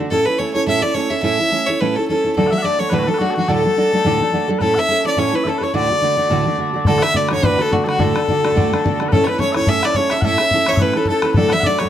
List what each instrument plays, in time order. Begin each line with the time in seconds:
0.00 twelve-string acoustic guitar D3 A3 D4 F#4
0.10 twelve-string acoustic guitar A2 A3 C#4 E4 A4, fiddle A4
0.26 twelve-string acoustic guitar C#4 E4 A4, fiddle B4
0.38 twelve-string acoustic guitar A3 C#4 E4 A4, fiddle C#5
0.54 twelve-string acoustic guitar C#4 E4 A4, fiddle C#5
0.67 twelve-string acoustic guitar A2 A3 C#4 E4 A4, fiddle E5
0.82 twelve-string acoustic guitar E4 A4, fiddle D5
0.94 twelve-string acoustic guitar A3 C#4 E4 A4, fiddle C#5
1.10 twelve-string acoustic guitar C#4 E4 A4, fiddle E5
1.23 twelve-string acoustic guitar A2 A3 C#4 E4 A4, fiddle E5
1.39 twelve-string acoustic guitar C#4 E4 A4
1.52 twelve-string acoustic guitar A3 C#4 E4 A4
1.67 twelve-string acoustic guitar C#4 E4 A4, fiddle C#5
1.81 twelve-string acoustic guitar A2 A3 C#4 E4 A4, fiddle B4
1.96 twelve-string acoustic guitar C#4 E4 A4, fiddle A4
2.08 twelve-string acoustic guitar A3 C#4 E4 A4, fiddle A4
2.24 twelve-string acoustic guitar C#4 E4 A4
2.36 twelve-string acoustic guitar D2 A2 F#3 A3 D4 A4, fiddle A4, bagpipes A4
2.47 bagpipes E5 F#5
2.52 twelve-string acoustic guitar F#3 A3 D4 A4, fiddle E5
2.58 bagpipes F#5
2.62 twelve-string acoustic guitar F#3 A3 D4 A4, bagpipes D5, fiddle D5
2.79 twelve-string acoustic guitar F#3 A3 D4 A4, bagpipes C#5, fiddle C#5
2.90 twelve-string acoustic guitar D2 A2 F#3 A3 D4 A4, bagpipes B4, fiddle B4
2.99 bagpipes C#5
3.04 bagpipes A4 B4, twelve-string acoustic guitar A4
3.08 twelve-string acoustic guitar F#3 A3 D4, fiddle A4
3.14 bagpipes B4
3.18 twelve-string acoustic guitar F#3 A3 D4 A4, bagpipes F#4, fiddle F#4
3.30 bagpipes F#4 A4
3.37 twelve-string acoustic guitar F#3 A3 D4 A4, fiddle F#4
3.48 twelve-string acoustic guitar D2 A2 F#3 A3 D4 A4, bagpipes A4, fiddle A4
3.65 twelve-string acoustic guitar F#3 A3 D4 A4
3.77 twelve-string acoustic guitar F#3 A3 D4 A4
3.93 twelve-string acoustic guitar F#3 A3 D4 A4
4.04 twelve-string acoustic guitar D2 A2 F#3 A3 D4 A4
4.20 twelve-string acoustic guitar F#3 A3 D4 A4
4.33 twelve-string acoustic guitar F#3 A3 D4 A4
4.48 twelve-string acoustic guitar F#3 A3 D4 A4
4.58 twelve-string acoustic guitar A2 A3 C#4 E4 A4, bagpipes A4 B4, fiddle A4
4.75 twelve-string acoustic guitar C#4 E4 A4, bagpipes E5 F#5, fiddle E5
4.88 twelve-string acoustic guitar A3 C#4 E4 A4
5.05 twelve-string acoustic guitar C#4 E4 A4, bagpipes D5, fiddle D5
5.17 twelve-string acoustic guitar A2 A3 C#4 E4 A4, bagpipes C#5, fiddle C#5
5.33 twelve-string acoustic guitar C#4 E4 A4, fiddle B4
5.44 twelve-string acoustic guitar A3 C#4 E4 A4, bagpipes A4 E5
5.49 fiddle A4
5.58 twelve-string acoustic guitar E4 A4, bagpipes B4
5.63 twelve-string acoustic guitar C#4, bagpipes C#5, fiddle C#5
5.74 twelve-string acoustic guitar D2 A2 D3 A3 D4 F#4, bagpipes D5, fiddle D5
5.90 twelve-string acoustic guitar D3 A3 D4 F#4
6.02 twelve-string acoustic guitar D3 A3 D4 F#4
6.17 twelve-string acoustic guitar D3 A3 D4 F#4
6.29 twelve-string acoustic guitar D2 A2 D3 A3 D4 F#4
6.45 twelve-string acoustic guitar D3 A3 D4 F#4
6.58 twelve-string acoustic guitar D3 A3 D4 F#4
6.74 twelve-string acoustic guitar D3 A3 D4 F#4
6.85 twelve-string acoustic guitar D2 A2 D3 A3 D4 F#4, fiddle A4, bagpipes A4, bodhran
6.99 twelve-string acoustic guitar F#4, fiddle E5, bagpipes F#5, bodhran
7.03 twelve-string acoustic guitar D3 A3 D4, bagpipes E5
7.14 twelve-string acoustic guitar D3 A3 D4 F#4, bagpipes D5, fiddle D5, bodhran
7.29 twelve-string acoustic guitar D3 A3 D4 F#4, bodhran
7.33 fiddle C#5, bagpipes C#5
7.37 bodhran
7.42 twelve-string acoustic guitar D2 A2 D3 A3 D4 F#4, bagpipes B4, fiddle B4, bodhran
7.58 twelve-string acoustic guitar D3 A3 D4 F#4, fiddle A4, bodhran
7.71 twelve-string acoustic guitar D3 A3 D4 F#4, bagpipes F#4, fiddle F#4, bodhran
7.84 twelve-string acoustic guitar A3 D4 F#4, fiddle F#4, bagpipes F#4 A4
7.88 twelve-string acoustic guitar D3, bodhran
7.98 twelve-string acoustic guitar D2 A2 D3 A3 D4 F#4, bagpipes A4, fiddle A4, bodhran
8.15 twelve-string acoustic guitar D3 A3 D4 F#4, bodhran
8.28 twelve-string acoustic guitar D3 A3 D4 F#4, bodhran
8.44 twelve-string acoustic guitar D3 A3 D4 F#4, bodhran
8.52 twelve-string acoustic guitar D2 A2 D4, bodhran
8.56 twelve-string acoustic guitar D3 A3 F#4, bodhran
8.72 twelve-string acoustic guitar D3 A3 D4 F#4, bodhran
8.84 twelve-string acoustic guitar D3 A3 D4 F#4, bodhran
9.00 twelve-string acoustic guitar D3 A3 D4 F#4, bodhran
9.08 twelve-string acoustic guitar A2 A3, bagpipes A4 B4
9.13 twelve-string acoustic guitar C#4 E4 A4, fiddle A4, bodhran
9.24 twelve-string acoustic guitar A4, fiddle C#5, bodhran
9.28 twelve-string acoustic guitar C#4 E4, fiddle B4, bagpipes B4
9.39 twelve-string acoustic guitar A3 C#4 E4 A4, fiddle C#5, bagpipes C#5, bodhran
9.52 twelve-string acoustic guitar E4 A4, fiddle C#5, bagpipes C#5 E5, bodhran
9.57 twelve-string acoustic guitar C#4
9.61 bodhran
9.67 twelve-string acoustic guitar A2 A3 C#4 E4 A4, fiddle E5, bagpipes E5, bodhran
9.83 twelve-string acoustic guitar C#4 E4 A4, fiddle D5, bagpipes D5 F#5, bodhran
9.94 twelve-string acoustic guitar A3 C#4 E4 A4, fiddle C#5, bagpipes C#5, bodhran
10.10 twelve-string acoustic guitar C#4 E4 A4, fiddle E5, bagpipes E5, bodhran
10.21 twelve-string acoustic guitar A2 A3 C#4 E4 A4, bagpipes E5 F#5, bodhran
10.26 fiddle E5
10.38 twelve-string acoustic guitar C#4 E4 A4, bodhran
10.51 twelve-string acoustic guitar A3 C#4 E4 A4, bodhran
10.66 twelve-string acoustic guitar C#4 E4 A4, bagpipes C#5, fiddle C#5, bodhran
10.73 bagpipes E5, bodhran
10.77 twelve-string acoustic guitar A2 A3 C#4, bagpipes B4, bodhran
10.81 twelve-string acoustic guitar E4 A4, fiddle B4
10.93 twelve-string acoustic guitar C#4 E4 A4, fiddle A4, bodhran
11.05 twelve-string acoustic guitar A3 C#4, bagpipes A4, fiddle A4, bodhran
11.10 twelve-string acoustic guitar E4 A4
11.22 twelve-string acoustic guitar C#4 E4 A4, bagpipes B4, bodhran
11.34 twelve-string acoustic guitar D2 A2 F#3 A3 D4 A4, fiddle A4, bagpipes A4, bodhran
11.49 fiddle E5, bagpipes F#5, bodhran
11.53 twelve-string acoustic guitar F#3 A3 D4 A4, bagpipes E5
11.60 bagpipes D5 F#5, bodhran
11.66 twelve-string acoustic guitar F#3 A3 D4 A4, fiddle D5
11.79 twelve-string acoustic guitar F#3 A3 D4 A4, fiddle C#5, bagpipes C#5, bodhran
11.85 bodhran